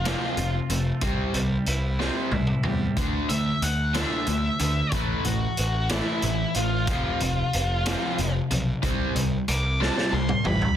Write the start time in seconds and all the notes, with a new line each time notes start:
Already playing: F1 F2 A3 F4
0.04 F2 C3 F3 C4, snare, closed hi-hat
0.37 F1 F2 C3 F4, closed hi-hat
0.70 F1 F2 C3 A3, closed hi-hat
1.01 C2 C3 G3 C4, kick, closed hi-hat
1.34 C2 C3 G3, closed hi-hat
1.66 C2 E4, closed hi-hat
1.99 C3 G3 C4, snare
2.31 C2 C3 G3 E4, high tom
2.47 mid tom
2.63 E2 C3 G3, mid tom
2.97 D2 D3 A3 D4, kick, closed hi-hat
3.29 D2 D3 A3 E5, closed hi-hat
3.62 D2 F#5, closed hi-hat
3.94 D3 A3 D4 E5, snare, closed hi-hat
4.27 D2 D3 A3, closed hi-hat
4.59 D2 D3 A3, closed hi-hat
4.92 A1 A2 E3 A3 B4, kick, closed hi-hat
5.24 A1 A2 E3 F#4, closed hi-hat
5.57 A1, closed hi-hat
5.89 A2 E3 A3 E4, snare, closed hi-hat
6.22 A1 A2 E3, closed hi-hat
6.54 A1 A2 E3 F4, closed hi-hat
6.87 F1 F2 C3 F3, kick, closed hi-hat
7.20 F1 F2 C3, closed hi-hat
7.53 F1, closed hi-hat
7.86 F2 C3 F3, snare, closed hi-hat
8.18 F1 F2 C3, closed hi-hat
8.51 B1 F2 C3, closed hi-hat
8.82 C2 C3 G3 C4, kick, closed hi-hat
9.16 C2 C3 G3, closed hi-hat
9.48 C2 D6, closed hi-hat
9.80 C3 G3 C4 A5, snare
9.98 snare
10.13 C2 C3 G3 C6
10.29 mid tom
10.45 A1 C3 G3 B5, mid tom
10.62 floor tom